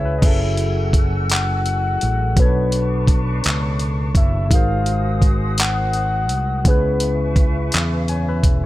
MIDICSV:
0, 0, Header, 1, 6, 480
1, 0, Start_track
1, 0, Key_signature, 3, "minor"
1, 0, Tempo, 714286
1, 151, Time_signature, 6, 3, 24, 8
1, 5819, End_track
2, 0, Start_track
2, 0, Title_t, "Flute section"
2, 0, Program_c, 0, 73
2, 149, Note_on_c, 0, 78, 74
2, 150, Note_on_c, 0, 66, 78
2, 150, Note_on_c, 0, 88, 94
2, 151, Note_on_c, 0, 80, 76
2, 1576, Note_off_c, 0, 66, 0
2, 1576, Note_off_c, 0, 78, 0
2, 1576, Note_off_c, 0, 88, 0
2, 1577, Note_off_c, 0, 80, 0
2, 1591, Note_on_c, 0, 62, 76
2, 1591, Note_on_c, 0, 85, 95
2, 1592, Note_on_c, 0, 71, 77
2, 1594, Note_on_c, 0, 81, 77
2, 3017, Note_off_c, 0, 62, 0
2, 3017, Note_off_c, 0, 71, 0
2, 3017, Note_off_c, 0, 85, 0
2, 3018, Note_off_c, 0, 81, 0
2, 3027, Note_on_c, 0, 72, 82
2, 3028, Note_on_c, 0, 80, 74
2, 3029, Note_on_c, 0, 66, 78
2, 3030, Note_on_c, 0, 87, 90
2, 4455, Note_off_c, 0, 72, 0
2, 4455, Note_off_c, 0, 80, 0
2, 4456, Note_off_c, 0, 66, 0
2, 4456, Note_off_c, 0, 87, 0
2, 4468, Note_on_c, 0, 76, 81
2, 4470, Note_on_c, 0, 80, 75
2, 4470, Note_on_c, 0, 85, 85
2, 4471, Note_on_c, 0, 71, 82
2, 5697, Note_off_c, 0, 76, 0
2, 5725, Note_off_c, 0, 85, 0
2, 5745, Note_off_c, 0, 71, 0
2, 5755, Note_off_c, 0, 80, 0
2, 5819, End_track
3, 0, Start_track
3, 0, Title_t, "Soft synth lead"
3, 0, Program_c, 1, 80
3, 0, Note_on_c, 1, 76, 100
3, 98, Note_off_c, 1, 76, 0
3, 121, Note_on_c, 1, 75, 61
3, 170, Note_on_c, 1, 76, 98
3, 180, Note_off_c, 1, 75, 0
3, 641, Note_off_c, 1, 76, 0
3, 886, Note_on_c, 1, 78, 124
3, 1607, Note_on_c, 1, 71, 99
3, 1617, Note_off_c, 1, 78, 0
3, 2139, Note_off_c, 1, 71, 0
3, 2802, Note_on_c, 1, 76, 100
3, 3043, Note_on_c, 1, 77, 109
3, 3053, Note_off_c, 1, 76, 0
3, 3517, Note_off_c, 1, 77, 0
3, 3760, Note_on_c, 1, 78, 127
3, 4485, Note_on_c, 1, 71, 99
3, 4495, Note_off_c, 1, 78, 0
3, 5018, Note_off_c, 1, 71, 0
3, 5819, End_track
4, 0, Start_track
4, 0, Title_t, "Tine electric piano"
4, 0, Program_c, 2, 4
4, 0, Control_c, 2, 64, 127
4, 0, Note_on_c, 2, 49, 51
4, 0, Note_on_c, 2, 61, 53
4, 0, Note_on_c, 2, 64, 47
4, 0, Note_on_c, 2, 68, 53
4, 0, Note_on_c, 2, 71, 58
4, 0, Note_on_c, 2, 73, 61
4, 0, Note_on_c, 2, 76, 62
4, 0, Note_on_c, 2, 78, 59
4, 0, Note_on_c, 2, 80, 57
4, 36, Note_off_c, 2, 71, 0
4, 36, Note_on_c, 2, 71, 55
4, 43, Note_on_c, 2, 66, 41
4, 117, Note_off_c, 2, 49, 0
4, 123, Note_off_c, 2, 61, 0
4, 129, Note_off_c, 2, 64, 0
4, 134, Note_on_c, 2, 54, 57
4, 147, Note_on_c, 2, 61, 54
4, 158, Note_on_c, 2, 64, 55
4, 159, Note_off_c, 2, 68, 0
4, 159, Control_c, 2, 64, 0
4, 160, Note_off_c, 2, 80, 0
4, 165, Note_off_c, 2, 73, 0
4, 166, Note_off_c, 2, 76, 0
4, 166, Note_off_c, 2, 78, 0
4, 172, Note_on_c, 2, 68, 51
4, 183, Note_on_c, 2, 69, 63
4, 262, Note_off_c, 2, 71, 0
4, 265, Note_off_c, 2, 66, 0
4, 290, Control_c, 2, 64, 127
4, 1556, Note_off_c, 2, 54, 0
4, 1562, Note_off_c, 2, 61, 0
4, 1568, Note_off_c, 2, 64, 0
4, 1574, Note_off_c, 2, 68, 0
4, 1580, Note_off_c, 2, 69, 0
4, 1581, Note_on_c, 2, 47, 64
4, 1592, Note_on_c, 2, 59, 60
4, 1600, Control_c, 2, 64, 0
4, 1604, Note_on_c, 2, 61, 45
4, 1613, Note_on_c, 2, 69, 53
4, 1625, Note_on_c, 2, 73, 73
4, 1641, Note_off_c, 2, 61, 0
4, 1649, Note_on_c, 2, 62, 62
4, 1719, Control_c, 2, 64, 127
4, 2999, Note_off_c, 2, 47, 0
4, 3005, Note_off_c, 2, 59, 0
4, 3015, Note_off_c, 2, 69, 0
4, 3016, Note_on_c, 2, 56, 61
4, 3021, Note_off_c, 2, 73, 0
4, 3025, Note_on_c, 2, 63, 57
4, 3033, Note_off_c, 2, 62, 0
4, 3039, Control_c, 2, 64, 0
4, 3039, Note_on_c, 2, 66, 57
4, 3052, Note_on_c, 2, 70, 61
4, 3061, Note_on_c, 2, 72, 76
4, 3143, Control_c, 2, 64, 127
4, 4436, Note_off_c, 2, 56, 0
4, 4441, Note_off_c, 2, 63, 0
4, 4448, Note_off_c, 2, 66, 0
4, 4455, Note_off_c, 2, 70, 0
4, 4459, Note_off_c, 2, 72, 0
4, 4461, Note_on_c, 2, 49, 58
4, 4473, Note_on_c, 2, 61, 61
4, 4481, Control_c, 2, 64, 0
4, 4484, Note_on_c, 2, 64, 52
4, 4493, Note_on_c, 2, 68, 57
4, 4505, Note_on_c, 2, 71, 69
4, 4606, Control_c, 2, 64, 127
4, 5423, Note_off_c, 2, 68, 0
4, 5429, Note_off_c, 2, 71, 0
4, 5438, Note_on_c, 2, 80, 58
4, 5445, Note_on_c, 2, 73, 46
4, 5549, Note_off_c, 2, 80, 0
4, 5552, Note_off_c, 2, 73, 0
4, 5567, Note_on_c, 2, 76, 67
4, 5570, Note_on_c, 2, 71, 62
4, 5788, Note_off_c, 2, 76, 0
4, 5789, Note_off_c, 2, 71, 0
4, 5819, Note_off_c, 2, 49, 0
4, 5819, Note_off_c, 2, 61, 0
4, 5819, Note_off_c, 2, 64, 0
4, 5819, End_track
5, 0, Start_track
5, 0, Title_t, "Fretless electric bass"
5, 0, Program_c, 3, 35
5, 0, Note_on_c, 3, 37, 66
5, 130, Note_off_c, 3, 37, 0
5, 157, Note_on_c, 3, 30, 108
5, 1327, Note_off_c, 3, 30, 0
5, 1363, Note_on_c, 3, 33, 95
5, 1574, Note_off_c, 3, 33, 0
5, 1597, Note_on_c, 3, 35, 107
5, 2287, Note_off_c, 3, 35, 0
5, 2324, Note_on_c, 3, 37, 97
5, 2771, Note_off_c, 3, 37, 0
5, 2794, Note_on_c, 3, 30, 93
5, 3036, Note_off_c, 3, 30, 0
5, 3036, Note_on_c, 3, 32, 110
5, 4241, Note_off_c, 3, 32, 0
5, 4241, Note_on_c, 3, 36, 88
5, 4452, Note_off_c, 3, 36, 0
5, 4476, Note_on_c, 3, 37, 114
5, 5167, Note_off_c, 3, 37, 0
5, 5203, Note_on_c, 3, 40, 91
5, 5650, Note_off_c, 3, 40, 0
5, 5675, Note_on_c, 3, 28, 92
5, 5819, Note_off_c, 3, 28, 0
5, 5819, End_track
6, 0, Start_track
6, 0, Title_t, "Drums"
6, 149, Note_on_c, 9, 36, 119
6, 151, Note_on_c, 9, 49, 99
6, 152, Note_on_c, 9, 42, 65
6, 217, Note_off_c, 9, 36, 0
6, 218, Note_off_c, 9, 49, 0
6, 219, Note_off_c, 9, 42, 0
6, 386, Note_on_c, 9, 42, 48
6, 453, Note_off_c, 9, 42, 0
6, 627, Note_on_c, 9, 36, 82
6, 630, Note_on_c, 9, 42, 48
6, 694, Note_off_c, 9, 36, 0
6, 698, Note_off_c, 9, 42, 0
6, 871, Note_on_c, 9, 42, 78
6, 890, Note_on_c, 9, 39, 101
6, 938, Note_off_c, 9, 42, 0
6, 958, Note_off_c, 9, 39, 0
6, 1113, Note_on_c, 9, 42, 44
6, 1180, Note_off_c, 9, 42, 0
6, 1352, Note_on_c, 9, 42, 52
6, 1420, Note_off_c, 9, 42, 0
6, 1590, Note_on_c, 9, 36, 101
6, 1591, Note_on_c, 9, 42, 69
6, 1657, Note_off_c, 9, 36, 0
6, 1658, Note_off_c, 9, 42, 0
6, 1829, Note_on_c, 9, 42, 53
6, 1896, Note_off_c, 9, 42, 0
6, 2066, Note_on_c, 9, 36, 84
6, 2070, Note_on_c, 9, 42, 48
6, 2133, Note_off_c, 9, 36, 0
6, 2137, Note_off_c, 9, 42, 0
6, 2311, Note_on_c, 9, 42, 77
6, 2330, Note_on_c, 9, 39, 91
6, 2378, Note_off_c, 9, 42, 0
6, 2397, Note_off_c, 9, 39, 0
6, 2550, Note_on_c, 9, 42, 45
6, 2617, Note_off_c, 9, 42, 0
6, 2787, Note_on_c, 9, 36, 94
6, 2791, Note_on_c, 9, 42, 53
6, 2854, Note_off_c, 9, 36, 0
6, 2858, Note_off_c, 9, 42, 0
6, 3029, Note_on_c, 9, 36, 104
6, 3032, Note_on_c, 9, 42, 70
6, 3096, Note_off_c, 9, 36, 0
6, 3100, Note_off_c, 9, 42, 0
6, 3267, Note_on_c, 9, 42, 52
6, 3334, Note_off_c, 9, 42, 0
6, 3505, Note_on_c, 9, 36, 82
6, 3509, Note_on_c, 9, 42, 46
6, 3573, Note_off_c, 9, 36, 0
6, 3576, Note_off_c, 9, 42, 0
6, 3748, Note_on_c, 9, 42, 80
6, 3768, Note_on_c, 9, 39, 105
6, 3815, Note_off_c, 9, 42, 0
6, 3835, Note_off_c, 9, 39, 0
6, 3988, Note_on_c, 9, 42, 47
6, 4055, Note_off_c, 9, 42, 0
6, 4228, Note_on_c, 9, 42, 55
6, 4296, Note_off_c, 9, 42, 0
6, 4469, Note_on_c, 9, 36, 101
6, 4469, Note_on_c, 9, 42, 67
6, 4536, Note_off_c, 9, 36, 0
6, 4537, Note_off_c, 9, 42, 0
6, 4705, Note_on_c, 9, 42, 60
6, 4772, Note_off_c, 9, 42, 0
6, 4945, Note_on_c, 9, 36, 92
6, 4947, Note_on_c, 9, 42, 46
6, 5012, Note_off_c, 9, 36, 0
6, 5014, Note_off_c, 9, 42, 0
6, 5188, Note_on_c, 9, 42, 82
6, 5207, Note_on_c, 9, 39, 96
6, 5255, Note_off_c, 9, 42, 0
6, 5275, Note_off_c, 9, 39, 0
6, 5431, Note_on_c, 9, 42, 43
6, 5499, Note_off_c, 9, 42, 0
6, 5668, Note_on_c, 9, 36, 83
6, 5669, Note_on_c, 9, 42, 53
6, 5736, Note_off_c, 9, 36, 0
6, 5736, Note_off_c, 9, 42, 0
6, 5819, End_track
0, 0, End_of_file